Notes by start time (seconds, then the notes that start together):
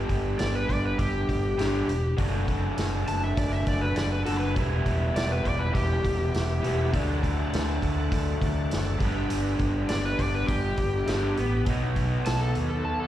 Already playing: G3 B3 D4 G4 B4
0.09 G1, kick, open hi-hat
0.39 G1 D5, snare, open hi-hat
0.55 B4
0.68 G1 D5, kick, open hi-hat
0.85 B4
0.98 G1 G4, kick, open hi-hat
1.29 G1, kick, open hi-hat
1.57 G1 G3 B3 D4 G4, snare, open hi-hat
1.88 E1, open hi-hat
2.16 F#1 F#3 A3 D4 F#4 A4, kick, open hi-hat
2.20 F#4
2.48 kick, open hi-hat
2.78 F#1, snare, open hi-hat
3.07 F#1 A5, open hi-hat
3.24 E5
3.37 F#1 D5, kick, open hi-hat
3.52 E5
3.67 F#1 D5, kick, open hi-hat
3.81 B4
3.96 F#1 D5, snare, open hi-hat
4.12 B4
4.26 F#1 F#3 A3 D4 F#4 A4, open hi-hat
4.39 B4
4.55 E1 E3 G3 B3 C4 E4 F4 G#4 C5, kick, open hi-hat
4.78 B3 E4 G4 B4
4.86 E1, kick, open hi-hat
5.16 E1 D5, snare, open hi-hat
5.32 B4
5.44 E1 D5, kick, open hi-hat
5.59 B4
5.73 E1 G4, kick, open hi-hat
6.04 E1, kick, open hi-hat
6.34 E1, snare, open hi-hat
6.62 E1 E3 G3 B3 E4, open hi-hat
6.91 D2 D3 F#3 A3 D4 F#4 A4, kick, open hi-hat
6.95 D4
7.23 kick, open hi-hat
7.53 D2, snare, open hi-hat
7.82 D2, kick, open hi-hat
8.12 D2, kick, open hi-hat
8.41 D2, kick, open hi-hat
8.71 F#1, snare, open hi-hat
8.98 G1 G2 D3 G3 B3 D4 B4, kick, open hi-hat
9.02 B3 G4
9.30 G1, open hi-hat
9.59 G1, kick, open hi-hat
9.89 G1 D5, snare, open hi-hat
10.05 B4
10.18 G1 D5, kick, open hi-hat
10.35 B4
10.47 G1 G4, kick, open hi-hat
10.77 G1, kick, open hi-hat
11.06 G1 G2 D3 G3 B3 D4, snare, open hi-hat
11.37 A1, open hi-hat
11.65 B1 B2 F#3 B3 D#4 F#4 B4, kick, open hi-hat
11.96 kick, open hi-hat
12.25 B1 A5, snare, open hi-hat
12.41 A4
12.55 D#2, open hi-hat
12.70 A4
12.85 A5
13.00 A4